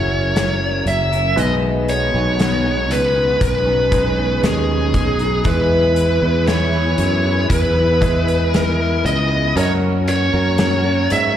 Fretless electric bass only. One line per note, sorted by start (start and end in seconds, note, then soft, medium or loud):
0.00 0.82 F#1 medium
0.86 1.34 F#1 medium
1.37 2.10 B1 medium
2.14 2.91 B1 medium
2.91 3.38 C#2 medium
3.41 4.39 B1 medium
4.43 4.91 D#2 medium
4.94 5.42 B1 medium
5.45 6.18 E2 medium
6.22 6.95 E2 medium
6.98 7.47 F#2 medium
7.50 9.01 E2 medium
9.05 9.53 C#2 medium
9.56 10.29 F#2 loud
10.34 11.07 F#2 medium
11.12 11.37 G#2 medium